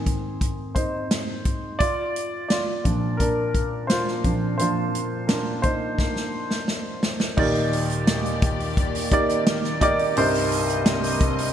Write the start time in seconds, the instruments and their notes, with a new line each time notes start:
Already playing: grand piano G#2 D#3 C4 G#4
0.06 kick, closed hi-hat
0.41 kick, closed hi-hat
0.75 grand piano D#4 C5, kick, closed hi-hat
1.11 snare, closed hi-hat
1.45 kick, closed hi-hat
1.79 grand piano F4 D5, kick, closed hi-hat
2.16 closed hi-hat
2.48 grand piano F4 D5, snare, closed hi-hat
2.84 grand piano A#2 F3 D4, kick, closed hi-hat
3.17 grand piano D4 A#4, kick, closed hi-hat
3.55 kick, closed hi-hat
3.87 grand piano F4 C5, snare, closed hi-hat
4.08 snare
4.24 grand piano A#2 F3 D4, kick, closed hi-hat
4.58 grand piano A#2 F3 D4 F4 C5, closed hi-hat
4.95 closed hi-hat
5.27 grand piano D4 A#4, snare, closed hi-hat
5.62 grand piano D#4 C5, kick, closed hi-hat
5.99 kick, snare
6.16 snare
6.51 snare
6.68 snare
7.03 snare
7.20 snare
7.37 string section D#2 D#3 G4 D5, grand piano D#2 A#2 D#4 G4 A#4 D5, kick, crash
7.55 open hi-hat
7.73 hi-hat pedal, open hi-hat
7.90 hi-hat pedal, open hi-hat
8.07 snare, hi-hat pedal, open hi-hat
8.25 hi-hat pedal
8.42 kick, hi-hat pedal, open hi-hat
8.60 open hi-hat
8.77 kick, hi-hat pedal, open hi-hat
8.95 hi-hat pedal, open hi-hat
9.11 grand piano D#4 G4 A#4 D5, kick, hi-hat pedal, open hi-hat
9.29 hi-hat pedal, open hi-hat
9.47 snare, hi-hat pedal, open hi-hat
9.64 snare, hi-hat pedal
9.81 grand piano D#4 G4 A#4 D5, kick, hi-hat pedal, open hi-hat
9.99 open hi-hat
10.16 grand piano C2 G2 D#4 G4 A#4 C5, string section C3 G3 A#4 D#5, hi-hat pedal, open hi-hat
10.34 hi-hat pedal, open hi-hat
10.51 hi-hat pedal, open hi-hat
10.68 hi-hat pedal, open hi-hat
10.86 snare, hi-hat pedal, open hi-hat
11.03 hi-hat pedal, open hi-hat
11.20 kick, hi-hat pedal, open hi-hat
11.38 hi-hat pedal, open hi-hat